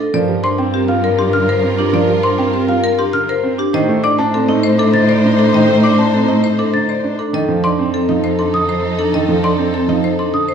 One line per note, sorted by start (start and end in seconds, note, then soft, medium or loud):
0.00 0.18 A4 medium
0.13 3.58 G2 medium
0.13 0.33 F3 medium
0.13 3.55 F4 medium
0.13 3.54 A#4 medium
0.13 0.33 A#4 medium
0.13 3.55 A#4 medium
0.13 0.33 D5 medium
0.29 0.48 G3 medium
0.43 0.63 D4 medium
0.43 0.63 C5 medium
0.43 0.63 C6 loud
0.58 0.78 C4 medium
0.58 0.78 G5 medium
0.74 0.93 C4 medium
0.74 0.93 G4 medium
0.88 1.08 G3 medium
0.88 1.08 F4 medium
0.88 1.08 F5 medium
1.04 1.23 A#4 medium
1.18 1.38 D4 medium
1.18 1.38 G4 medium
1.18 1.38 C6 medium
1.33 1.53 D3 medium
1.33 1.53 F6 medium
1.48 1.68 A#4 medium
1.48 1.68 C5 medium
1.63 1.83 C4 medium
1.79 1.98 D4 loud
1.79 1.98 G4 medium
1.93 2.13 F3 medium
1.93 2.13 A#4 medium
1.93 2.13 D5 medium
2.08 2.28 G3 medium
2.23 2.43 D4 medium
2.23 2.43 C5 medium
2.23 2.43 C6 loud
2.38 2.58 C4 medium
2.38 2.58 G5 medium
2.54 2.73 C4 medium
2.54 2.73 G4 medium
2.68 2.88 G3 medium
2.68 2.88 F4 medium
2.68 2.88 F5 medium
2.84 3.03 A#4 loud
2.98 3.18 D4 medium
2.98 3.18 G4 medium
2.98 3.18 C6 medium
3.13 3.33 D3 medium
3.13 3.33 F6 loud
3.29 3.48 A#4 medium
3.29 3.48 C5 medium
3.43 3.63 C4 medium
3.59 3.78 D4 loud
3.59 3.78 G4 medium
3.73 7.18 A2 loud
3.73 3.93 D#3 loud
3.73 7.14 D#4 loud
3.73 7.14 C5 medium
3.73 3.93 C5 medium
3.73 7.08 C5 loud
3.73 3.93 D#5 loud
3.89 4.08 A3 medium
4.04 4.23 D4 loud
4.04 4.23 D5 medium
4.04 4.23 D6 loud
4.19 4.38 D4 loud
4.19 4.38 A5 loud
4.34 4.53 C4 medium
4.34 4.53 A4 medium
4.49 4.68 A3 medium
4.49 4.68 D#4 loud
4.49 4.68 D#5 loud
4.63 4.83 C5 loud
4.79 4.98 D4 medium
4.79 4.99 A4 medium
4.79 4.98 D6 medium
4.94 5.13 D3 medium
4.94 5.13 A6 medium
5.09 5.28 C5 loud
5.09 5.28 D5 medium
5.24 5.43 D4 medium
5.39 5.58 D4 medium
5.39 5.58 A4 medium
5.54 5.73 D#3 medium
5.54 5.73 C5 medium
5.54 5.74 D#5 medium
5.69 5.88 A3 medium
5.84 6.03 D4 medium
5.84 6.03 D5 medium
5.84 6.03 D6 loud
5.98 6.18 D4 medium
5.98 6.18 A5 medium
6.13 6.33 C4 medium
6.13 6.33 A4 medium
6.28 6.48 A3 medium
6.28 6.48 D#4 medium
6.28 6.48 D#5 medium
6.44 6.63 C5 medium
6.59 6.78 D4 medium
6.59 6.78 A4 medium
6.59 6.78 D6 medium
6.74 6.93 D3 medium
6.74 6.93 A6 medium
6.89 7.08 C5 medium
6.89 7.08 D5 medium
7.04 7.23 D4 medium
7.19 7.38 D4 medium
7.19 7.38 A4 medium
7.33 10.54 F2 medium
7.33 7.53 D#3 medium
7.33 10.54 D#4 medium
7.33 7.53 A4 medium
7.33 10.54 A4 medium
7.33 7.53 D#5 medium
7.49 7.68 F3 medium
7.64 7.83 D4 medium
7.64 7.84 D5 medium
7.64 7.83 C6 loud
7.79 7.98 C4 medium
7.94 8.13 C4 medium
7.94 8.13 A4 medium
8.09 8.28 F3 medium
8.09 8.28 D#4 loud
8.09 8.28 D#5 medium
8.24 8.43 C5 medium
8.39 8.58 D4 medium
8.39 8.58 A4 medium
8.39 8.58 C6 medium
8.54 8.73 D3 medium
8.54 8.73 D#6 medium
8.69 8.88 C5 medium
8.99 9.18 D4 medium
8.99 9.18 A4 medium
9.13 9.33 D#3 medium
9.13 9.33 A4 medium
9.13 9.33 D#5 medium
9.29 9.48 F3 medium
9.43 9.63 D4 medium
9.43 9.63 D5 medium
9.43 9.63 C6 loud
9.58 9.78 C4 medium
9.74 9.93 C4 medium
9.74 9.93 A4 medium
9.88 10.08 F3 medium
9.88 10.08 D#4 medium
9.88 10.08 D#5 medium
10.04 10.23 C5 medium
10.19 10.38 D4 medium
10.19 10.38 A4 medium
10.19 10.38 C6 medium
10.33 10.53 D3 medium
10.33 10.53 D#6 medium
10.49 10.54 C5 medium